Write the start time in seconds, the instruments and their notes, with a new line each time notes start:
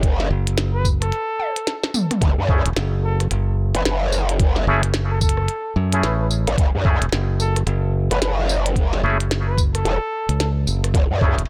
Already playing: wobble bass F#1
0.03 kick, closed hi-hat
0.20 snare
0.30 fingered electric bass F#1
0.47 closed hi-hat
0.58 snare, closed hi-hat
0.74 trumpet B4
0.85 kick, tambourine
1.02 trumpet A4, cross-stick, closed hi-hat
1.12 closed hi-hat
1.40 high tom
1.56 closed hi-hat
1.67 snare, closed hi-hat
1.84 snare
1.94 mid tom, tambourine
2.11 cross-stick, closed hi-hat, mid tom
2.21 wobble bass F#1, kick, closed hi-hat
2.38 wobble bass F#2
2.49 clav A3 C#4 E4 G#4, kick
2.66 fingered electric bass E1, closed hi-hat
2.76 fingered electric bass F#1, snare, closed hi-hat
3.04 trumpet A4
3.20 cross-stick, closed hi-hat
3.31 fingered electric bass F#1, closed hi-hat
3.75 wobble bass F#1, trumpet B4, cross-stick, closed hi-hat
3.85 wobble bass F#1, trumpet B4, snare, closed hi-hat
4.12 tambourine
4.29 closed hi-hat
4.40 kick, closed hi-hat
4.56 snare
4.67 fingered electric bass F#1, clav A3 C#4 E4 G#4
4.83 closed hi-hat
4.94 snare, closed hi-hat
5.11 trumpet A4
5.21 trumpet A4, kick, tambourine
5.29 closed hi-hat
5.37 cross-stick
5.48 closed hi-hat
5.76 fingered electric bass F#2
5.92 clav A3 C#4 E4 G#4, closed hi-hat
6.03 fingered electric bass A1, trumpet B4, snare, closed hi-hat
6.20 trumpet B4
6.31 tambourine
6.47 wobble bass A1, cross-stick, closed hi-hat
6.58 wobble bass F#1, kick, closed hi-hat
6.75 wobble bass F#2
6.85 clav A3 C#4 E4 G#4, kick
7.01 fingered electric bass E1, closed hi-hat
7.12 fingered electric bass F#1, snare, closed hi-hat
7.40 trumpet A4, tambourine
7.56 cross-stick, closed hi-hat
7.67 fingered electric bass F#1, closed hi-hat
8.11 wobble bass F#1, trumpet B4, cross-stick, closed hi-hat
8.21 wobble bass F#1, trumpet B4, snare, closed hi-hat
8.49 tambourine
8.66 closed hi-hat
8.76 kick, closed hi-hat
8.93 snare
9.03 fingered electric bass F#1, clav A3 C#4 E4 G#4
9.20 closed hi-hat
9.31 snare, closed hi-hat
9.47 trumpet B4
9.58 kick, tambourine
9.74 trumpet A4, cross-stick, closed hi-hat
9.85 wobble bass E1, closed hi-hat
10.29 fingered electric bass C#2, closed hi-hat
10.40 snare, closed hi-hat
10.67 fingered electric bass F#1, tambourine
10.84 cross-stick, closed hi-hat
10.94 wobble bass F#1, kick, closed hi-hat
11.11 wobble bass F#2
11.21 clav A3 C#4 E4 G#4, kick
11.38 fingered electric bass E1, closed hi-hat